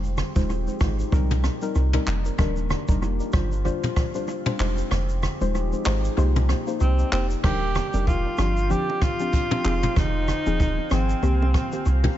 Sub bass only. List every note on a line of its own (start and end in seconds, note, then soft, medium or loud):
0.00 0.22 F1 loud
0.36 0.68 D#1 medium
0.81 1.03 G#1 medium
1.12 1.48 C2 loud
1.75 1.98 C2 medium
2.07 2.30 F1 medium
2.39 2.74 D#1 loud
2.89 3.21 F1 medium
3.33 3.69 G1 loud
4.60 4.82 F1 medium
4.91 5.27 F1 loud
5.41 5.73 D#1 medium
5.86 6.09 G#1 medium
6.18 6.53 C2 loud
6.81 7.03 C2 medium
7.12 7.35 F1 medium
7.44 7.79 D#1 loud
7.94 8.26 F1 medium
8.38 8.74 G1 loud
9.65 9.87 F1 loud
9.96 10.32 F1 loud
10.46 10.78 D#1 medium
10.91 11.14 G#1 loud
11.23 11.58 C2 loud
11.86 12.09 C2 loud